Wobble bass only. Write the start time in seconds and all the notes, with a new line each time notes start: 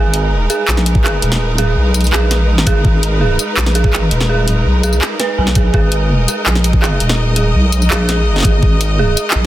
Already playing: G#1
0.68 A#1
1.23 D#1
1.77 B1
2.13 A#1
2.50 A1
2.67 G#1
2.85 G#1
3.57 A#1
3.94 A1
4.11 D#1
4.66 B1
5.38 B1
5.74 G#1
6.47 A#1
7.01 D#1
7.55 B1
7.91 A#1
8.45 G#1
8.63 G#1
9.36 A#1